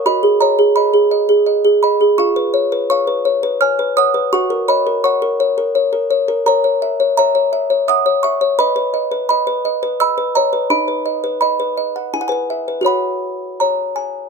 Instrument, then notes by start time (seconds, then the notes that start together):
music box
0.06 F#4 D#5 B5
0.23 G#4
0.41 C#5 D#5 A#5
0.59 G#4
0.76 D#5 B5
0.94 G#4
1.11 D#5
1.29 G#4
1.46 D#5
1.65 G#4
1.83 D#5 B5
2.01 G#4
2.18 F4 F5 C#6
2.36 B4
2.54 C#5
2.72 B4
2.90 C#5 F5 C#6
3.07 B4
3.25 C#5
3.43 B4
3.61 C#5 G#5 F6
3.79 B4
3.97 C#5 F#5 D#6
4.14 B4
4.33 F#4 F#5 C#6
4.50 A#4
4.68 C#5 D#5 B5
4.87 A#4
5.04 C#5 F#5 C#6
5.22 A#4
5.40 C#5
5.58 A#4
5.75 C#5
5.93 A#4
6.11 C#5
6.28 A#4
6.46 A#4 C#5 A#5
6.64 C#5
6.82 E5
7.00 C#5
7.17 C#5 E5 A#5
7.35 C#5
7.53 E5
7.70 C#5
7.88 E5 F#5 D#6
8.06 C#5
8.23 E5 C#6
8.41 C#5
8.59 B4 D#5 B5
8.76 B4
8.94 D#5
9.11 B4
9.29 D#5 B5
9.47 B4
9.65 D#5
9.83 B4
10.00 D#5 B5 E6
10.18 B4
10.35 C#5 D#5 A#5
10.53 B4
10.70 D#4 D#5 B5
10.88 B4
11.06 D#5
11.24 B4
11.41 D#5 B5
11.60 B4
11.77 D#5
11.96 F#5
12.14 E4 G#5
12.21 F#5
12.28 B4 G#5
12.32 B4
12.50 E5
12.68 B4
12.81 F#4 C#5
12.86 F#5 B5
13.60 C#5 A#5
13.96 G#5